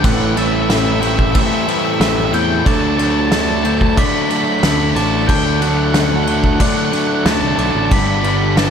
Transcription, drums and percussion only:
0.04 kick, crash
0.37 crash
0.70 snare, crash
1.03 crash
1.19 kick
1.35 kick, crash
1.68 crash
2.01 snare, crash
2.34 crash
2.66 kick, crash
2.99 crash
3.32 snare, crash
3.65 crash
3.81 kick
3.97 kick, crash
4.30 crash
4.63 snare, crash
4.96 crash
5.29 kick, crash
5.62 crash
5.94 snare, crash
6.27 crash
6.44 kick
6.60 kick, crash
6.93 crash
7.26 snare, crash
7.59 crash
7.91 kick, crash
8.24 crash
8.57 snare, crash

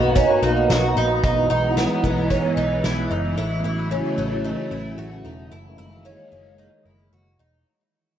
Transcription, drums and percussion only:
0.16 kick, closed hi-hat
0.69 snare, closed hi-hat
1.23 kick, closed hi-hat
1.77 snare, closed hi-hat
2.04 kick
2.30 kick, closed hi-hat
2.84 snare, closed hi-hat

